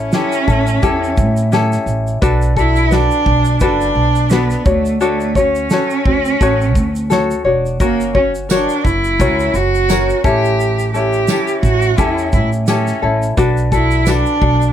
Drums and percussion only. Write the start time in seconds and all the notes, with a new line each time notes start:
0.12 snare, shaker
0.32 shaker
0.48 kick, shaker
0.67 shaker
0.83 kick, shaker
1.04 shaker
1.17 kick, shaker
1.37 shaker
1.52 snare, shaker
1.73 snare, shaker
1.87 shaker
2.07 shaker
2.22 kick, shaker
2.42 shaker
2.57 kick, shaker
2.76 shaker
2.92 snare, shaker
3.11 shaker
3.26 kick
3.45 shaker
3.60 kick, shaker
3.81 shaker
4.15 shaker
4.30 snare, shaker
4.50 snare, shaker
4.66 kick, shaker
4.85 shaker
5.01 shaker
5.20 shaker
5.35 kick, shaker
5.55 shaker
5.70 snare, shaker
5.90 shaker
6.06 kick
6.25 shaker
6.41 kick, shaker
6.61 shaker
6.75 kick, shaker
6.96 shaker
7.11 snare, shaker
7.31 shaker
7.66 shaker
7.80 kick, shaker
8.00 shaker
8.15 kick
8.35 shaker
8.50 snare, tambourine, shaker
8.69 shaker
8.85 kick, shaker
9.04 shaker
9.20 kick, shaker
9.40 shaker
9.54 shaker
9.75 shaker
9.89 snare, tambourine, shaker
10.10 shaker
10.24 kick, shaker
10.45 shaker
10.60 shaker
10.79 shaker
10.95 shaker
11.13 shaker
11.28 snare, tambourine, shaker
11.48 shaker
11.63 kick, shaker
11.82 shaker
11.98 kick, shaker
12.18 shaker
12.33 kick, shaker
12.53 shaker
12.67 snare, tambourine, shaker
12.87 snare, shaker
13.23 shaker
13.37 kick, shaker
13.57 shaker
13.72 kick, shaker
13.91 shaker
14.06 snare, tambourine, shaker
14.26 shaker
14.42 kick
14.62 shaker